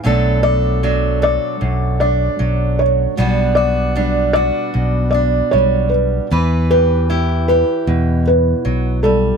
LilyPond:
<<
  \new Staff \with { instrumentName = "Felt piano" } { \time 4/4 \key b \minor \tempo 4 = 77 r8 d''4 d''4 d''4 cis''8 | r8 d''4 d''4 d''8 cis''8 b'8 | r8 b'4 b'4 b'4 a'8 | }
  \new Staff \with { instrumentName = "Steel-string acoustic guitar" } { \time 4/4 \key b \minor << { <fis a d' a'>8 a'8 d'8 a'4 d'4. | <g b d' fis'>8 fis'8 d'8 fis'4 d'4. | b'8 g'8 g'8 g'4 r4. | } \\ { b,4 fis4 fis,4 fis4 | b,4 g4 b,4 g4 | e4 e'4 b,4 fis8 g8 | } >> }
  \new Staff \with { instrumentName = "Fingered electric bass" } { \clef bass \time 4/4 \key b \minor b,,2 b,,4 b,,4 | b,,2 b,,4 b,,4 | e,2 e,4 b,,4 | }
>>